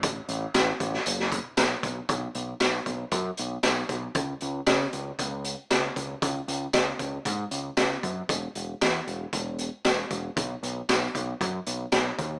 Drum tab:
HH |x-x-x-x-x-x-x-x-|x-x-x-x-x-x-x-x-|x-x-x-x-x-x-x-x-|x-x-x-x-x-x-x-x-|
TB |----x-------x---|----x-------x---|----x-------x---|----x-------x---|
SD |----o--o-o--o---|----o-------o---|----o-------o---|----o-------o---|
BD |o-----o---o---o-|o-----o-o-----o-|o-------o-----o-|o-----o-o-----o-|

HH |x-x-x-x-x-x-x-x-|x-x-x-x-x-x-x-x-|
TB |----x-------x---|----x-------x---|
SD |----o-------o---|----o-------o---|
BD |o-------o-----o-|o-----o-o-----o-|